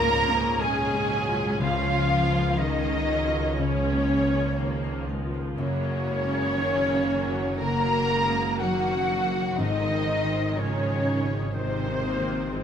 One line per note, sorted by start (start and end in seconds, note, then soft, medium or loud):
0.00 1.56 C#2 medium
0.00 0.28 G#2 medium
0.00 0.61 A#2 medium
0.00 1.45 C#3 medium
0.00 1.65 G#3 medium
0.00 0.59 A#3 loud
0.00 2.57 C#4 medium
0.00 3.75 C#4 medium
0.00 1.27 F4 medium
0.00 0.35 G#4 medium
0.00 0.60 A#4 loud
0.00 0.60 C#5 medium
0.00 0.84 F5 medium
0.00 0.60 A#5 loud
0.11 0.60 F3 medium
0.11 1.34 F4 medium
0.28 0.81 G#2 medium
0.36 1.65 G#4 medium
0.60 0.94 A#2 medium
0.60 1.60 G#3 medium
0.60 1.11 G#3 medium
0.60 1.60 G#4 medium
0.60 1.10 C#5 medium
0.60 1.60 G#5 medium
0.60 1.61 G#5 loud
0.85 2.82 F5 medium
0.94 1.47 G#2 medium
1.10 1.60 F#3 medium
1.10 5.01 C#5 medium
1.27 1.60 F4 medium
1.35 2.08 F4 medium
1.60 3.55 C#2 medium
1.60 5.54 C#2 medium
1.60 3.05 C#3 loud
1.60 3.57 C#3 medium
1.60 2.57 F3 loud
1.60 2.08 F3 medium
1.60 2.57 F4 medium
1.60 2.57 F4 loud
1.60 2.57 F5 loud
1.86 3.83 A#3 medium
1.93 2.46 F4 medium
2.09 2.58 F3 medium
2.09 2.58 F4 medium
2.26 2.79 C#3 medium
2.35 3.09 A#4 medium
2.59 3.59 D#3 medium
2.59 2.93 D#3 medium
2.59 3.09 G#3 medium
2.59 4.54 C#4 medium
2.59 3.59 D#4 medium
2.59 3.33 F4 medium
2.59 3.59 D#5 medium
2.59 3.59 D#5 loud
2.83 4.82 F5 medium
2.92 3.46 C#3 medium
3.08 3.58 F#3 medium
3.08 4.32 A#4 medium
3.25 3.79 F4 medium
3.34 4.08 F4 medium
3.58 5.54 C#2 medium
3.58 5.62 C#3 medium
3.58 5.08 C#3 medium
3.58 4.57 F3 medium
3.58 5.05 C#4 medium
3.58 5.08 C#4 medium
3.58 5.09 C#5 medium
3.58 5.09 C#5 loud
3.84 5.82 A#3 medium
3.92 4.45 A#3 medium
4.09 4.58 F4 medium
4.25 4.79 C#3 medium
4.33 5.08 A#4 medium
4.58 4.92 D#3 soft
4.58 5.56 F3 medium
4.58 5.08 A#3 medium
4.58 5.32 F4 medium
4.84 5.62 F5 medium
4.91 5.45 C#3 medium
5.08 5.58 G#3 medium
5.08 6.31 A#4 medium
5.25 5.58 F4 medium
5.34 5.62 F4 medium
5.58 9.55 F#1 medium
5.58 7.57 F#2 medium
5.58 9.48 F#2 medium
5.58 7.57 C#3 medium
5.58 6.08 F#3 medium
5.58 6.55 A#3 medium
5.58 7.57 C#4 loud
5.58 7.57 C#4 medium
5.58 7.57 C#5 loud
5.83 7.85 A#3 medium
5.91 6.44 F#4 medium
6.07 6.58 G#3 medium
6.07 6.55 F#4 medium
6.25 6.78 C#3 medium
6.32 7.06 A#4 medium
6.57 6.91 D#3 soft
6.57 7.09 F#3 medium
6.57 7.59 A#3 medium
6.57 7.33 F#4 medium
6.81 8.84 F#5 medium
6.91 7.47 C#3 medium
7.07 7.60 F#3 medium
7.07 8.34 A#4 medium
7.27 7.82 F#4 medium
7.35 8.09 F#4 medium
7.60 9.62 C#3 medium
7.60 8.16 C#3 medium
7.60 8.12 F#3 medium
7.60 9.55 A#3 medium
7.60 8.61 A#3 loud
7.60 8.60 A#4 loud
7.60 8.61 A#4 medium
7.60 8.60 A#5 loud
7.60 8.59 A#5 medium
7.86 9.62 A#3 medium
7.97 8.49 F#4 medium
8.10 8.61 G#3 medium
8.10 8.59 F#4 medium
8.29 8.81 C#3 medium
8.60 8.94 D#3 soft
8.60 9.58 F#3 medium
8.60 9.59 F#3 medium
8.60 9.56 F#4 medium
8.60 9.33 F#4 medium
8.60 9.60 F#4 medium
8.60 9.58 F#5 loud
8.60 9.59 F#5 loud
8.85 9.62 F#5 medium
8.94 9.46 C#3 medium
9.09 9.62 A#4 medium
9.25 9.58 F#4 medium
9.34 9.63 F#4 medium
9.58 12.63 G#1 medium
9.58 11.50 G#2 medium
9.58 11.01 G#2 loud
9.58 12.63 G#2 medium
9.58 10.56 D#3 medium
9.58 10.06 F3 medium
9.58 10.54 C4 medium
9.58 10.56 D#4 medium
9.58 10.57 D#4 medium
9.58 10.56 D#5 loud
9.58 10.55 D#5 medium
9.84 11.77 G#3 medium
9.92 10.43 D#4 medium
10.07 11.52 D#3 medium
10.07 11.27 D#4 medium
10.24 10.76 D#3 medium
10.32 12.63 C6 medium
10.55 11.54 C#3 medium
10.55 10.88 F3 soft
10.55 11.52 G#3 medium
10.55 11.53 C#4 medium
10.55 11.38 C#4 medium
10.55 11.03 G#4 medium
10.55 11.54 C#5 loud
10.55 11.54 C#5 medium
10.80 12.63 D#5 medium
10.89 11.41 D#3 medium
11.04 12.52 G#4 medium
11.21 11.73 D#4 medium
11.28 12.02 D#4 medium
11.53 12.63 C3 medium
11.53 12.63 D#3 medium
11.53 12.49 D#3 medium
11.53 12.06 D#3 medium
11.53 12.02 G#3 medium
11.53 12.63 C4 medium
11.53 12.63 C5 loud
11.53 12.63 C5 medium
11.79 12.63 G#3 medium
11.87 12.39 D#4 medium
12.02 12.50 A#3 medium
12.02 12.63 D#4 medium
12.19 12.63 D#3 medium
12.28 12.63 C5 medium
12.51 12.63 F3 soft
12.51 12.63 G#3 medium
12.51 12.63 C4 medium
12.51 12.63 G#4 medium